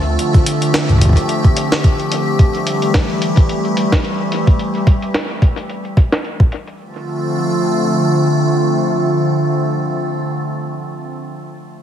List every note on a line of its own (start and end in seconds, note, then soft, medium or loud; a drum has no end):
0.00 0.17 D2 medium
0.00 2.35 D3 medium
0.00 2.35 F3 medium
0.00 2.35 A3 medium
0.00 4.55 C4 medium
0.00 0.17 F4 medium
0.19 4.55 G4 medium
0.19 closed hi-hat medium
0.34 kick loud
0.34 closed hi-hat soft
0.46 closed hi-hat loud
0.62 closed hi-hat medium
0.74 snare loud
0.74 closed hi-hat medium
0.89 kick soft
0.89 closed hi-hat soft
0.92 kick medium
0.95 kick medium
0.99 kick medium
0.99 closed hi-hat medium
1.02 kick medium
1.05 kick medium
1.09 kick medium
1.13 kick loud
1.13 closed hi-hat medium
1.29 closed hi-hat medium
1.44 kick loud
1.44 closed hi-hat soft
1.57 closed hi-hat medium
1.72 snare loud
1.72 closed hi-hat soft
1.84 kick loud
1.84 closed hi-hat medium
2.00 closed hi-hat soft
2.12 closed hi-hat medium
2.39 4.57 E3 medium
2.39 4.57 G3 medium
2.39 4.57 A3 medium
2.39 kick loud
2.39 closed hi-hat medium
2.55 closed hi-hat soft
2.67 closed hi-hat medium
2.82 closed hi-hat medium
2.94 kick loud
2.94 snare loud
2.94 closed hi-hat medium
3.10 closed hi-hat soft
3.22 closed hi-hat medium
3.37 kick loud
3.37 closed hi-hat medium
3.49 closed hi-hat medium
3.65 closed hi-hat soft
3.77 closed hi-hat medium
3.92 kick loud
3.92 snare loud
3.92 closed hi-hat medium
4.04 closed hi-hat medium
4.32 closed hi-hat medium
4.47 kick loud
4.47 closed hi-hat medium
4.59 closed hi-hat medium
4.75 closed hi-hat soft
4.87 kick loud
4.87 closed hi-hat medium
5.02 closed hi-hat medium
5.14 snare loud
5.14 closed hi-hat medium
5.30 closed hi-hat soft
5.42 kick loud
5.42 closed hi-hat medium
5.57 closed hi-hat medium
5.70 closed hi-hat soft
5.85 closed hi-hat soft
5.97 kick loud
5.97 closed hi-hat medium
6.12 snare loud
6.12 closed hi-hat soft
6.25 closed hi-hat soft
6.40 kick loud
6.40 closed hi-hat soft
6.52 closed hi-hat medium
6.67 closed hi-hat soft
6.80 9.76 D3 medium
6.80 9.76 F3 medium
6.80 9.76 A3 medium
6.80 9.76 C4 medium
6.80 9.76 F4 medium